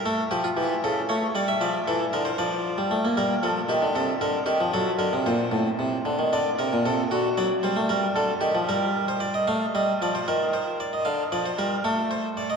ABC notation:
X:1
M:12/8
L:1/16
Q:3/8=76
K:Gm
V:1 name="Harpsichord"
A2 G F G2 A2 ^c2 d =e d2 A2 B =c d6 | B2 A2 G2 A2 B2 G2 A2 B2 c8 | d2 B2 A2 ^F2 d2 c2 B2 A2 G2 B3 c d e | f2 e2 d c B2 c2 d e f2 d c B2 A2 c2 d e |]
V:2 name="Harpsichord" clef=bass
A,2 F,2 =E,2 ^C,2 A,2 G,2 F,2 E,2 D,2 F,3 G, A, B, | G,2 F,2 E, D, C,2 D,2 E, F, ^F,2 D, C, B,,2 A,,2 C,2 D, ^D, | D,2 C, B,, C,2 D,2 ^F,2 G, A, G,2 D,2 E, =F, G,6 | A,2 G,2 F,2 E,6 D,2 F,2 G,2 A,6 |]